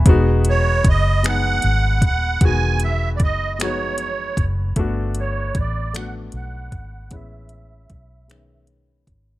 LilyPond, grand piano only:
\new Staff \with { instrumentName = "Grand piano" } { \time 6/8 \key e \major \tempo 4. = 51 <gis b dis' fis'>4 r8 <gis b dis' gis'>4 r8 | <dis gis b fis'>4 r8 <gis b dis' fis'>4 r8 | <a b d' fis'>4 r8 <a b d' fis'>4 r8 | <gis b cis' e'>4 r8 <dis gis b cis'>4 r8 | }